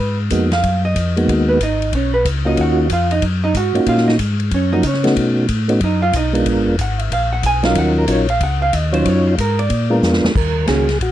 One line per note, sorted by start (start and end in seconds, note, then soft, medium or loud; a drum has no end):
0.00 0.30 G#2 medium
0.00 0.17 B4 medium
0.30 0.63 F2 medium
0.30 0.50 G#3 medium
0.30 0.50 A#3 medium
0.30 0.50 B3 medium
0.30 0.50 D#4 medium
0.30 0.50 F#4 medium
0.30 kick soft
0.30 hi-hat pedal medium
0.30 ride medium
0.51 0.82 F5 loud
0.51 snare medium
0.51 ride soft
0.63 0.95 F#2 medium
0.63 kick soft
0.63 ride medium
0.85 1.15 D#5 loud
0.96 1.27 F2 medium
0.96 kick soft
0.96 hi-hat pedal medium
0.96 ride medium
1.16 1.58 G#3 medium
1.16 1.58 A#3 medium
1.16 1.59 B3 medium
1.16 1.59 D#4 medium
1.16 1.59 F#4 medium
1.16 ride soft
1.28 1.60 D#2 medium
1.28 kick soft
1.28 ride medium
1.49 1.60 B3 medium
1.49 1.60 B4 medium
1.61 1.92 G#1 medium
1.61 1.92 D#4 medium
1.61 1.92 D#5 loud
1.61 kick soft
1.61 hi-hat pedal medium
1.61 ride medium
1.82 ride soft
1.93 2.24 B1 medium
1.93 2.14 C#4 medium
1.93 2.14 C#5 medium
1.93 kick soft
1.93 ride medium
2.14 2.25 B3 medium
2.14 2.25 B4 medium
2.25 2.57 C#2 medium
2.25 kick soft
2.25 hi-hat pedal medium
2.25 ride medium
2.45 2.88 A#3 medium
2.45 2.88 C#4 medium
2.45 2.88 D#4 medium
2.45 2.58 D#4 medium
2.45 2.87 F4 medium
2.45 2.88 F#4 medium
2.45 2.58 D#5 medium
2.57 2.89 D#2 medium
2.57 2.90 F#5 loud
2.57 kick soft
2.57 ride medium
2.62 2.90 F#4 medium
2.90 3.21 F2 loud
2.90 3.12 F4 medium
2.90 3.12 F5 medium
2.90 kick soft
2.90 hi-hat pedal medium
2.90 ride medium
3.11 3.23 D#4 medium
3.11 3.23 D#5 loud
3.11 ride soft
3.22 3.54 F#2 medium
3.22 kick soft
3.22 ride medium
3.44 3.55 D#4 medium
3.44 3.55 D#5 loud
3.54 3.73 G#2 medium
3.54 3.86 F#4 medium
3.54 3.86 F#5 medium
3.54 kick soft
3.54 hi-hat pedal medium
3.54 ride medium
3.74 3.80 G#2 soft
3.74 4.17 A#3 medium
3.74 4.17 C#4 medium
3.74 4.17 D#4 medium
3.74 4.17 F4 medium
3.74 4.18 F#4 medium
3.74 ride soft
3.86 4.18 A#2 medium
3.86 4.07 F4 medium
3.86 4.08 F5 medium
3.86 kick soft
3.86 ride medium
3.97 snare soft
4.08 4.15 D#4 medium
4.08 4.15 D#5 medium
4.08 snare soft
4.19 4.51 G#2 medium
4.19 kick soft
4.19 hi-hat pedal medium
4.19 ride medium
4.40 ride soft
4.51 4.83 F#2 medium
4.51 4.73 C#4 medium
4.51 4.72 C#5 medium
4.51 kick soft
4.51 ride medium
4.72 4.83 F3 medium
4.72 4.83 A#3 medium
4.72 4.83 C#4 medium
4.72 4.84 D#4 medium
4.72 4.84 F#4 medium
4.72 4.84 D#5 loud
4.83 5.15 C#3 medium
4.83 5.16 C#4 medium
4.83 kick soft
4.83 hi-hat pedal medium
4.83 ride medium
4.87 5.16 C#5 medium
4.94 snare soft
5.04 5.46 A3 medium
5.04 5.46 B3 medium
5.04 5.46 C#4 medium
5.04 5.47 D#4 medium
5.04 5.47 F#4 medium
5.04 snare soft
5.04 ride soft
5.16 5.48 B2 medium
5.16 kick soft
5.16 ride medium
5.48 5.80 A2 medium
5.48 kick soft
5.48 hi-hat pedal medium
5.48 ride medium
5.68 5.80 A3 medium
5.68 5.80 B3 medium
5.68 5.80 C#4 medium
5.68 5.80 D#4 medium
5.68 5.81 F#4 medium
5.68 ride soft
5.81 6.12 F#2 medium
5.81 6.03 D#4 medium
5.81 6.03 D#5 medium
5.81 kick soft
5.81 ride medium
6.02 6.14 F4 medium
6.02 6.14 F5 loud
6.13 6.45 B1 medium
6.13 6.46 D#4 medium
6.13 6.45 D#5 medium
6.13 kick soft
6.13 hi-hat pedal medium
6.13 ride medium
6.33 6.76 G#3 medium
6.33 6.76 B3 medium
6.33 6.76 D4 medium
6.33 6.76 F4 medium
6.33 6.76 A#4 medium
6.33 ride soft
6.46 6.57 A#1 medium
6.46 kick soft
6.46 ride medium
6.57 6.68 G#1 medium
6.67 6.78 F1 medium
6.79 7.10 G#1 loud
6.79 7.01 F#5 medium
6.79 kick soft
6.79 hi-hat pedal medium
6.79 ride medium
6.99 7.12 E5 loud
6.99 ride soft
7.11 7.43 A#1 medium
7.11 7.32 F5 medium
7.11 kick soft
7.11 ride medium
7.33 7.44 F#5 loud
7.43 7.75 B1 medium
7.43 7.65 G#5 loud
7.43 kick soft
7.43 hi-hat pedal medium
7.43 ride medium
7.63 8.05 F#3 medium
7.63 8.05 C#4 medium
7.63 8.05 D#4 medium
7.63 8.06 F4 medium
7.63 8.06 A#4 medium
7.63 7.76 F5 loud
7.63 snare medium
7.63 ride soft
7.75 8.07 D#2 medium
7.75 7.97 F#5 loud
7.75 kick soft
7.75 ride medium
7.98 8.09 A#4 medium
8.08 8.40 A#1 loud
8.08 8.27 F#3 medium
8.08 8.27 C#4 medium
8.08 8.27 D#4 medium
8.08 8.27 F4 medium
8.08 8.27 A#4 medium
8.08 8.30 C#5 medium
8.08 kick soft
8.08 hi-hat pedal medium
8.08 ride medium
8.29 8.41 F5 loud
8.29 ride soft
8.41 8.72 C#2 medium
8.41 8.62 F#5 loud
8.41 kick soft
8.41 ride medium
8.62 8.76 F5 loud
8.73 9.04 D#2 medium
8.73 8.94 D#5 medium
8.73 kick soft
8.73 hi-hat pedal medium
8.73 ride medium
8.92 9.35 F#3 medium
8.92 9.35 C#4 medium
8.92 9.35 D#4 medium
8.92 9.35 F4 medium
8.92 9.08 C5 loud
8.92 9.35 C#5 medium
8.92 ride medium
9.05 9.37 F#2 medium
9.05 9.27 C#5 loud
9.05 kick soft
9.05 ride medium
9.27 9.38 F4 medium
9.38 9.69 G#2 medium
9.38 9.59 A#4 medium
9.38 kick soft
9.38 hi-hat pedal medium
9.38 ride medium
9.59 9.89 D5 loud
9.59 ride soft
9.70 10.02 A#2 medium
9.70 kick soft
9.70 ride medium
9.90 10.32 G#3 medium
9.90 10.32 B3 medium
9.90 10.33 D4 medium
9.90 10.32 F4 medium
9.90 10.33 A#4 medium
10.02 10.22 F2 loud
10.02 snare medium
10.02 hi-hat pedal medium
10.13 snare medium
10.24 10.29 F2 soft
10.24 snare medium
10.35 10.67 D#2 medium
10.35 10.66 A#4 loud
10.35 kick medium
10.35 crash medium
10.67 10.99 C#2 medium
10.67 10.86 D#3 medium
10.67 10.86 A#3 medium
10.67 10.86 C#4 medium
10.67 10.86 F#4 medium
10.67 10.98 G#4 medium
10.67 kick soft
10.67 snare medium
10.67 hi-hat pedal medium
10.67 ride medium
10.89 snare soft
10.89 ride soft
11.01 11.12 A#1 medium
11.01 11.12 F#4 medium
11.01 kick soft
11.01 ride medium